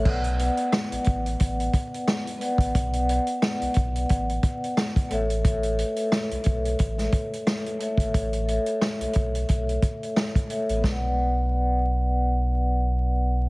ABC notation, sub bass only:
X:1
M:4/4
L:1/16
Q:"Swing 16ths" 1/4=89
K:Amix
V:1 name="Sub bass" clef=bass
B,,,3 z2 A,,, A,,,2 A,,,2 z4 z A,,, | B,,,3 z2 B,,, B,,,2 A,,,2 z4 A,,,2- | A,,,3 z2 B,,, B,,,2 A,,,2 z4 z ^G,,, | A,,,3 z2 B,,, B,,,2 B,,,2 z4 z A,,, |
B,,,16 |]